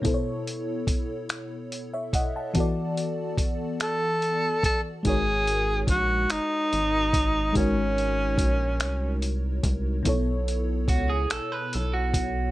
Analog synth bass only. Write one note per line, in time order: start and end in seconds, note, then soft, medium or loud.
5.06 5.85 G#1 medium
5.88 6.26 A#1 medium
6.32 6.40 G#1 soft
6.73 7.52 G#1 medium
7.57 8.41 G#1 medium
8.39 8.83 A#1 medium
8.82 9.60 C2 medium
9.64 10.02 C2 medium
10.06 10.90 B1 medium
10.89 11.27 C#2 medium
11.32 11.40 B1 soft
11.75 12.51 B1 medium